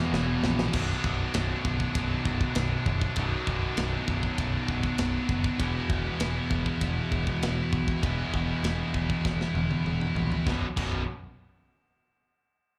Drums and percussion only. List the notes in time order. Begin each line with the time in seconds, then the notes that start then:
0.14 snare
0.44 snare
0.59 snare
0.73 kick, crash
1.04 kick
1.34 snare, ride bell
1.65 kick
1.80 kick
1.95 kick, ride bell
2.25 kick
2.41 kick
2.55 snare, ride bell
2.86 kick
3.01 kick
3.16 kick, ride bell
3.47 kick
3.77 snare, ride bell
4.08 kick
4.23 kick
4.38 kick, ride bell
4.68 kick
4.83 kick
4.98 snare, ride bell
5.29 kick
5.44 kick
5.60 kick, ride bell
5.90 kick
6.20 snare, ride bell
6.51 kick
6.66 kick
6.81 kick, ride bell
7.12 kick
7.27 kick
7.43 snare, ride bell
7.73 kick
7.88 kick
8.03 kick, ride bell
8.34 kick
8.64 snare, ride bell
8.94 kick
9.10 kick
9.25 kick, snare
9.41 snare
9.55 high tom
9.71 high tom
9.86 mid tom
10.01 mid tom
10.16 floor tom
10.32 floor tom
10.47 kick, snare
10.77 kick, crash